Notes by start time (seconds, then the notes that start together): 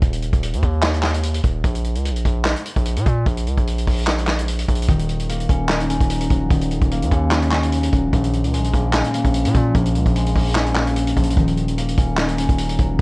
Already playing: A#3 C#4
0.02 D#1, kick, closed hi-hat
0.13 closed hi-hat
0.22 closed hi-hat
0.33 D#1, kick, closed hi-hat
0.43 closed hi-hat
0.53 D#2, closed hi-hat
0.63 D#2, kick, closed hi-hat
0.83 snare, clap
0.94 closed hi-hat
1.03 snare, clap
1.14 closed hi-hat
1.23 closed hi-hat
1.34 closed hi-hat
1.44 D#1, kick, closed hi-hat
1.64 A#1, kick, closed hi-hat
1.75 closed hi-hat
1.84 closed hi-hat
1.95 C#2, closed hi-hat
2.05 closed hi-hat
2.10 A#1
2.16 closed hi-hat
2.25 A#1, kick, closed hi-hat
2.45 snare, clap
2.56 closed hi-hat
2.65 closed hi-hat
2.76 A#1, kick, closed hi-hat
2.85 closed hi-hat
2.96 A#2, closed hi-hat
3.06 A#2, kick, closed hi-hat
3.26 A#1, kick, closed hi-hat
3.37 closed hi-hat
3.47 C#2, closed hi-hat
3.57 A#1, kick, closed hi-hat
3.67 closed hi-hat
3.78 closed hi-hat
3.87 A#1, kick, open hi-hat
4.07 snare, clap, hi-hat pedal
4.18 closed hi-hat
4.27 snare, clap
4.38 closed hi-hat
4.48 closed hi-hat
4.59 closed hi-hat
4.68 A#1, kick, closed hi-hat
4.75 closed hi-hat
4.82 closed hi-hat
4.88 D#1 D#3, kick, closed hi-hat
4.99 closed hi-hat
5.09 closed hi-hat
5.20 closed hi-hat
5.29 A#3, closed hi-hat
5.40 closed hi-hat
5.49 D#1 C#4, kick, closed hi-hat
5.69 D#4, snare, clap
5.80 closed hi-hat
5.90 C#4, closed hi-hat
6.01 D#1, kick, closed hi-hat
6.10 closed hi-hat
6.21 closed hi-hat
6.30 D#1 F#3, kick, closed hi-hat
6.51 D#1 D#3, kick, closed hi-hat
6.61 closed hi-hat
6.71 closed hi-hat
6.82 D#1, kick, closed hi-hat
6.91 A#3, closed hi-hat
7.02 D#2, closed hi-hat
7.11 D#2 C#4, kick, closed hi-hat
7.31 D#4, snare, clap
7.42 closed hi-hat
7.51 C#4, snare, clap
7.63 closed hi-hat
7.72 closed hi-hat
7.83 closed hi-hat
7.93 D#1 F#3, kick, closed hi-hat
8.13 A#1 A#2, kick, closed hi-hat
8.23 closed hi-hat
8.33 closed hi-hat
8.44 C#2, closed hi-hat
8.53 G#3, closed hi-hat
8.59 A#1
8.64 closed hi-hat
8.74 A#1 A#3, kick, closed hi-hat
8.94 C#4, snare, clap
9.04 closed hi-hat
9.14 A#3, closed hi-hat
9.25 A#1, kick, closed hi-hat
9.34 closed hi-hat
9.45 A#2, closed hi-hat
9.55 A#2 F3, kick, closed hi-hat
9.75 A#1 A#2, kick, closed hi-hat
9.86 closed hi-hat
9.95 C#2, closed hi-hat
10.06 A#1, kick, closed hi-hat
10.16 G#3, closed hi-hat
10.26 closed hi-hat
10.36 A#1 A#3, kick, open hi-hat
10.56 C#4, snare, clap, hi-hat pedal
10.67 closed hi-hat
10.76 A#3, snare, clap
10.87 closed hi-hat
10.96 closed hi-hat
11.07 closed hi-hat
11.17 A#1 F3, kick, closed hi-hat
11.24 closed hi-hat
11.30 closed hi-hat
11.37 D#1 D#3, kick, closed hi-hat
11.48 closed hi-hat
11.57 closed hi-hat
11.68 closed hi-hat
11.78 A#3, closed hi-hat
11.89 closed hi-hat
11.98 D#1 C#4, kick, closed hi-hat
12.18 D#4, snare, clap
12.29 closed hi-hat
12.38 C#4, closed hi-hat
12.49 D#1, kick, closed hi-hat
12.58 closed hi-hat
12.69 closed hi-hat
12.79 D#1 F#3, kick, closed hi-hat